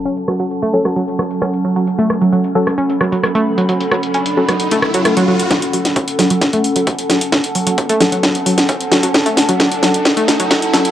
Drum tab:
HH |xx-xxx-xxx-xxx-x|xx-xxx-xxx-xxx-x|xx-xxx-xxx-xxx-x|xxoxxxoxxxoxxxox|
SD |--r----r--r-r---|--r----r--r-r---|--r----r--r-r---|o--o--o-o-----o-|
BD |----------------|----------------|----------------|o---o---o---o---|

HH |xxoxxxoxxxoxxxox|xxoxxxoxxxoxxxox|
SD |o-----o-o--o--o-|o-o-o-o-o-o-o-o-|
BD |o---o---o---o---|o---o---o---o---|